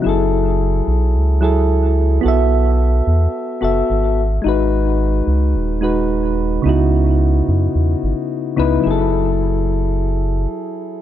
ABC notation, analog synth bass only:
X:1
M:4/4
L:1/8
Q:"Swing 16ths" 1/4=109
K:F#dor
V:1 name="Analog synth bass" clef=bass
F,,,3 B,,, C,,4 | B,,,3 E,, z F,,, G,,,2 | G,,,3 C,, D,,,4 | C,,3 F,, E,, G,,, z C,, |
F,,,6 z2 |]